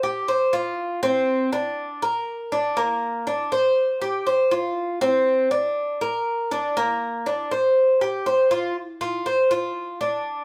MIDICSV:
0, 0, Header, 1, 2, 480
1, 0, Start_track
1, 0, Tempo, 499168
1, 741, Time_signature, 4, 2, 24, 8
1, 10043, End_track
2, 0, Start_track
2, 0, Title_t, "Cuban tres"
2, 0, Program_c, 0, 25
2, 32, Note_on_c, 0, 67, 72
2, 260, Note_off_c, 0, 67, 0
2, 272, Note_on_c, 0, 72, 68
2, 500, Note_off_c, 0, 72, 0
2, 509, Note_on_c, 0, 65, 74
2, 971, Note_off_c, 0, 65, 0
2, 988, Note_on_c, 0, 60, 82
2, 1451, Note_off_c, 0, 60, 0
2, 1467, Note_on_c, 0, 62, 68
2, 1930, Note_off_c, 0, 62, 0
2, 1946, Note_on_c, 0, 70, 72
2, 2409, Note_off_c, 0, 70, 0
2, 2424, Note_on_c, 0, 62, 71
2, 2656, Note_off_c, 0, 62, 0
2, 2662, Note_on_c, 0, 58, 79
2, 3127, Note_off_c, 0, 58, 0
2, 3143, Note_on_c, 0, 62, 67
2, 3375, Note_off_c, 0, 62, 0
2, 3384, Note_on_c, 0, 72, 72
2, 3849, Note_off_c, 0, 72, 0
2, 3861, Note_on_c, 0, 67, 69
2, 4094, Note_off_c, 0, 67, 0
2, 4102, Note_on_c, 0, 72, 70
2, 4335, Note_off_c, 0, 72, 0
2, 4340, Note_on_c, 0, 65, 72
2, 4807, Note_off_c, 0, 65, 0
2, 4820, Note_on_c, 0, 60, 85
2, 5287, Note_off_c, 0, 60, 0
2, 5299, Note_on_c, 0, 62, 71
2, 5766, Note_off_c, 0, 62, 0
2, 5782, Note_on_c, 0, 70, 73
2, 6248, Note_off_c, 0, 70, 0
2, 6264, Note_on_c, 0, 62, 72
2, 6496, Note_off_c, 0, 62, 0
2, 6508, Note_on_c, 0, 58, 81
2, 6971, Note_off_c, 0, 58, 0
2, 6984, Note_on_c, 0, 62, 66
2, 7216, Note_off_c, 0, 62, 0
2, 7225, Note_on_c, 0, 72, 68
2, 7690, Note_off_c, 0, 72, 0
2, 7705, Note_on_c, 0, 67, 68
2, 7937, Note_off_c, 0, 67, 0
2, 7945, Note_on_c, 0, 72, 66
2, 8177, Note_off_c, 0, 72, 0
2, 8182, Note_on_c, 0, 65, 76
2, 8415, Note_off_c, 0, 65, 0
2, 8663, Note_on_c, 0, 65, 77
2, 8896, Note_off_c, 0, 65, 0
2, 8903, Note_on_c, 0, 72, 72
2, 9136, Note_off_c, 0, 72, 0
2, 9143, Note_on_c, 0, 65, 71
2, 9609, Note_off_c, 0, 65, 0
2, 9623, Note_on_c, 0, 62, 69
2, 10043, Note_off_c, 0, 62, 0
2, 10043, End_track
0, 0, End_of_file